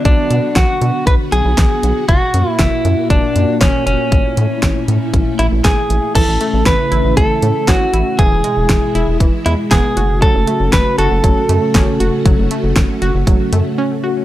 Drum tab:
CC |--------|--------|--------|x-------|
HH |xxxxxxxx|xxxxxxxx|xxxxxxxx|xxxxxxxx|
SD |--o---o-|--o---o-|--o---o-|--o---o-|
BD |o-o-o-o-|o-o-o-o-|o-o-o-o-|o-o-o-o-|

CC |--------|--------|--------|
HH |xxxxxxxx|xxxxxxxx|xxxxxx--|
SD |--o---o-|--o---o-|--o-----|
BD |o-o-o-o-|o-o-o-o-|o-o-o---|